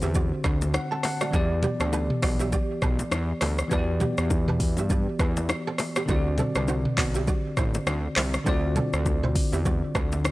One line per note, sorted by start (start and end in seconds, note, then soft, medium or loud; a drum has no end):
0.00 0.32 E2 medium
0.00 1.28 D3 medium
0.00 1.29 C4 medium
0.00 1.30 F#4 medium
0.00 0.11 G4 medium
0.00 1.31 C5 medium
0.00 0.11 E5 medium
0.00 downlifter medium
0.00 high bongo medium
0.00 shaker medium
0.14 0.27 F#4 medium
0.14 0.26 D5 medium
0.14 kick medium
0.14 low conga medium
0.14 shaker medium
0.44 0.78 D2 medium
0.44 0.56 D4 medium
0.44 0.56 B4 medium
0.44 kick loud
0.44 cross-stick medium
0.44 shaker medium
0.61 low bongo medium
0.61 shaker medium
0.74 0.90 F#5 medium
0.74 cross-stick loud
0.74 high bongo medium
0.74 shaker medium
0.91 1.00 C4 medium
0.91 1.00 A4 medium
0.91 1.03 A5 medium
1.03 1.20 F#5 medium
1.03 cross-stick medium
1.03 open hi-hat medium
1.03 low bongo medium
1.03 shaker medium
1.21 1.30 A3 medium
1.21 1.29 F#4 medium
1.21 1.34 D5 medium
1.21 cross-stick medium
1.21 shaker medium
1.31 1.67 E2 loud
1.31 3.66 E3 medium
1.31 3.66 B3 medium
1.31 1.45 D4 medium
1.31 3.67 G4 medium
1.31 1.45 B4 medium
1.31 kick loud
1.31 low conga medium
1.31 shaker medium
1.36 3.68 D5 medium
1.63 1.75 B3 medium
1.63 1.75 G4 medium
1.63 mid tom medium
1.63 low bongo medium
1.63 low conga medium
1.63 shaker medium
1.80 2.10 D2 medium
1.80 1.89 C4 medium
1.80 1.89 A4 medium
1.80 cross-stick medium
1.80 shaker medium
1.93 2.05 D4 medium
1.93 2.04 B4 medium
1.93 high bongo medium
1.93 shaker medium
2.10 mid tom medium
2.22 2.56 B1 medium
2.22 2.35 F#4 medium
2.22 2.34 D5 medium
2.22 kick loud
2.22 cross-stick loud
2.22 open hi-hat medium
2.22 shaker medium
2.39 2.49 G4 medium
2.39 2.48 E5 medium
2.39 high bongo medium
2.39 shaker medium
2.52 2.64 G4 medium
2.52 2.64 D5 medium
2.52 kick medium
2.52 low conga medium
2.52 shaker medium
2.82 3.03 B1 medium
2.82 2.94 D4 medium
2.82 2.94 B4 medium
2.82 kick medium
2.82 cross-stick medium
2.82 shaker medium
2.99 low bongo medium
2.99 shaker medium
3.11 3.33 E2 loud
3.11 cross-stick loud
3.11 high bongo medium
3.11 shaker medium
3.41 3.63 D2 loud
3.41 3.53 D4 medium
3.41 3.53 B4 medium
3.41 cross-stick medium
3.41 open hi-hat medium
3.41 low bongo medium
3.41 shaker medium
3.58 cross-stick medium
3.58 shaker medium
3.68 4.05 E2 loud
3.68 6.03 E3 medium
3.68 6.04 B3 medium
3.68 3.79 F#4 medium
3.68 3.83 B4 loud
3.68 kick loud
3.68 low conga medium
3.68 shaker medium
3.73 3.83 D4 medium
3.73 6.06 D5 medium
3.78 6.08 G4 medium
4.00 4.13 B3 medium
4.00 4.12 G4 medium
4.00 mid tom medium
4.00 low conga medium
4.00 shaker medium
4.18 4.79 E2 medium
4.18 cross-stick medium
4.18 shaker medium
4.30 kick medium
4.30 high bongo medium
4.30 shaker medium
4.48 4.57 D4 medium
4.48 4.56 B4 medium
4.48 mid tom medium
4.60 kick loud
4.60 open hi-hat medium
4.60 shaker medium
4.77 5.08 G2 medium
4.77 4.87 G4 medium
4.77 4.86 E5 medium
4.77 high bongo medium
4.77 shaker medium
4.90 5.02 G4 medium
4.90 5.02 D5 medium
4.90 kick medium
4.90 low conga medium
4.90 shaker medium
5.19 5.53 E2 medium
5.19 5.32 D4 medium
5.19 5.31 B4 medium
5.19 kick loud
5.19 cross-stick medium
5.19 shaker medium
5.37 low bongo medium
5.37 shaker medium
5.49 cross-stick loud
5.49 high bongo medium
5.49 shaker medium
5.67 5.76 C4 medium
5.67 5.75 A4 medium
5.78 cross-stick medium
5.78 open hi-hat medium
5.78 low bongo medium
5.78 shaker medium
5.96 6.05 B3 medium
5.96 6.05 G4 medium
5.96 cross-stick loud
5.96 shaker medium
6.06 6.42 D2 loud
6.06 8.41 D3 medium
6.06 8.42 C4 medium
6.06 6.17 E4 medium
6.06 6.20 C5 medium
6.06 kick loud
6.06 low conga medium
6.06 shaker medium
6.10 6.21 F#4 medium
6.10 8.43 D5 medium
6.16 8.46 F#4 medium
6.38 6.51 C4 medium
6.38 6.50 A4 medium
6.38 mid tom medium
6.38 low bongo medium
6.38 low conga medium
6.38 shaker medium
6.55 6.86 C2 loud
6.55 6.65 D4 medium
6.55 6.64 B4 medium
6.55 cross-stick medium
6.55 shaker medium
6.68 6.80 F#4 medium
6.68 6.80 C5 medium
6.68 high bongo medium
6.68 shaker medium
6.85 mid tom medium
6.98 7.31 B1 medium
6.98 7.10 F#4 medium
6.98 7.09 D5 medium
6.98 kick loud
6.98 cross-stick loud
6.98 clap medium
6.98 open hi-hat medium
6.98 shaker medium
7.14 7.24 G4 medium
7.14 7.23 E5 medium
7.14 high bongo medium
7.14 shaker medium
7.27 7.40 F#4 medium
7.27 7.39 D5 medium
7.27 kick medium
7.27 low conga medium
7.27 shaker medium
7.57 7.79 A1 medium
7.57 7.69 E4 medium
7.57 7.69 C5 medium
7.57 kick medium
7.57 cross-stick medium
7.57 shaker medium
7.74 low bongo medium
7.74 shaker medium
7.87 8.08 D2 loud
7.87 cross-stick loud
7.87 high bongo medium
7.87 shaker medium
8.16 8.38 C2 medium
8.16 8.29 E4 medium
8.16 8.28 C5 medium
8.16 cross-stick medium
8.16 clap medium
8.16 open hi-hat medium
8.16 low bongo medium
8.16 shaker medium
8.34 cross-stick medium
8.34 shaker medium
8.44 8.80 D2 loud
8.44 10.31 D3 medium
8.44 10.31 C4 medium
8.44 8.54 F4 medium
8.44 8.58 F#4 medium
8.44 8.58 C5 loud
8.44 kick loud
8.44 low conga medium
8.44 shaker medium
8.49 10.31 D5 medium
8.54 10.31 F#4 medium
8.76 8.88 C4 medium
8.76 8.88 A4 medium
8.76 mid tom medium
8.76 low bongo medium
8.76 low conga medium
8.76 shaker medium
8.93 9.36 D2 medium
8.93 cross-stick medium
8.93 shaker medium
9.06 kick medium
9.06 high bongo medium
9.06 shaker medium
9.23 9.32 E4 medium
9.23 9.31 C5 medium
9.23 mid tom medium
9.35 kick loud
9.35 open hi-hat medium
9.35 shaker medium
9.52 9.83 E2 medium
9.52 9.62 G4 medium
9.52 9.61 E5 medium
9.52 high bongo medium
9.52 shaker medium
9.65 9.77 F#4 medium
9.65 9.77 D5 medium
9.65 kick medium
9.65 low conga medium
9.65 shaker medium
9.95 10.29 D2 medium
9.95 10.07 D4 medium
9.95 10.06 B4 medium
9.95 kick loud
9.95 cross-stick medium
9.95 shaker medium
10.12 low bongo medium
10.12 shaker medium
10.25 cross-stick loud
10.25 high bongo medium
10.25 shaker medium